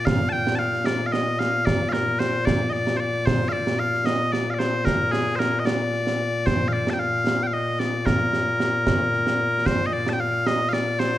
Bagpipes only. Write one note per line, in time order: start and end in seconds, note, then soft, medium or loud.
0.00 11.18 A#2 medium
0.05 0.29 F5 loud
0.29 0.55 G5 loud
0.29 0.32 A5 loud
0.55 0.86 F5 loud
0.55 0.59 A5 loud
0.86 1.06 D5 loud
1.06 1.12 F5 medium
1.12 1.39 D#5 medium
1.39 1.65 F5 medium
1.65 1.89 D5 loud
1.89 2.19 A#4 medium
1.89 1.93 F5 medium
2.19 2.45 C5 medium
2.45 2.70 D5 loud
2.70 2.97 D5 medium
2.70 2.73 D#5 medium
2.97 3.00 C5 medium
2.97 3.26 D5 loud
3.26 3.49 C5 loud
3.49 3.79 D5 medium
3.49 3.52 F5 medium
3.79 4.06 F5 medium
4.06 4.32 D#5 medium
4.32 4.50 D5 medium
4.50 4.59 D5 medium
4.50 4.54 F5 medium
4.59 4.85 C5 medium
4.85 5.12 A#4 medium
5.12 5.36 G#4 medium
5.36 5.60 A#4 medium
5.36 5.39 C5 medium
5.60 5.66 D#5 medium
5.66 6.46 D5 loud
6.46 6.68 C5 loud
6.68 6.73 F5 medium
6.73 6.90 D5 medium
6.90 6.99 G5 medium
6.90 6.93 A5 medium
6.99 7.43 F5 loud
7.43 7.53 F5 medium
7.43 7.47 G5 medium
7.53 7.79 D#5 medium
7.79 8.06 D5 medium
8.06 9.66 A#4 medium
9.66 9.86 C5 loud
9.86 9.93 D#5 medium
9.93 10.09 D5 loud
10.09 10.20 G5 medium
10.09 10.13 A5 medium
10.20 10.47 F5 loud
10.47 10.69 D#5 loud
10.69 10.73 F5 medium
10.73 10.99 D5 medium
10.99 11.18 C5 loud